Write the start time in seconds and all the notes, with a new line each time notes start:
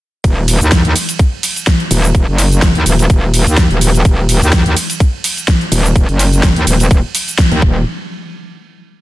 0.24 D#1, kick, closed hi-hat, ride, cabasa
0.48 open hi-hat, ride, cabasa
0.61 D#2, closed hi-hat, cabasa
0.72 kick, snare, closed hi-hat, ride, cabasa
0.85 D#2, closed hi-hat
0.96 open hi-hat, ride, cabasa
1.09 closed hi-hat, cabasa
1.19 kick, closed hi-hat, ride, cabasa
1.43 open hi-hat, ride, cabasa
1.56 closed hi-hat, cabasa
1.67 kick, snare, closed hi-hat, ride, cabasa
1.80 closed hi-hat
1.91 D#1, open hi-hat, ride, cabasa
2.04 closed hi-hat, cabasa
2.15 kick, closed hi-hat, cabasa
2.28 F#1
2.38 open hi-hat, ride, cabasa
2.52 closed hi-hat, cabasa
2.62 kick, snare, closed hi-hat, ride, cabasa
2.75 D#2, closed hi-hat
2.86 D#1, open hi-hat, ride, cabasa
2.99 closed hi-hat, cabasa
3.10 D#1, kick, closed hi-hat, ride, cabasa
3.34 open hi-hat, ride, cabasa
3.47 D#2, closed hi-hat, cabasa
3.57 kick, snare, closed hi-hat, ride, cabasa
3.71 D#1, closed hi-hat
3.81 open hi-hat, ride, cabasa
3.94 closed hi-hat, cabasa
4.05 D#1, kick, closed hi-hat, ride, cabasa
4.29 open hi-hat, ride, cabasa
4.42 D#2, closed hi-hat, cabasa
4.53 kick, snare, closed hi-hat, ride, cabasa
4.66 D#2, closed hi-hat
4.77 open hi-hat, ride, cabasa
4.90 closed hi-hat, cabasa
5.00 kick, closed hi-hat, ride, cabasa
5.24 open hi-hat, ride, cabasa
5.37 closed hi-hat, cabasa
5.48 kick, snare, closed hi-hat, ride, cabasa
5.61 closed hi-hat
5.72 D#1, open hi-hat, ride, cabasa
5.85 closed hi-hat, cabasa
5.96 kick, closed hi-hat, ride, cabasa
6.09 F#1, closed hi-hat
6.19 open hi-hat, ride, cabasa
6.33 closed hi-hat, cabasa
6.43 kick, snare, closed hi-hat, ride, cabasa
6.56 D#2, closed hi-hat
6.67 D#1, open hi-hat, ride, cabasa
6.80 closed hi-hat, cabasa
6.91 D#1, kick, closed hi-hat, ride, cabasa
7.15 open hi-hat, ride, cabasa
7.28 closed hi-hat, cabasa
7.38 kick, snare, closed hi-hat, ride, cabasa
7.52 D#2, closed hi-hat
7.62 D#1, kick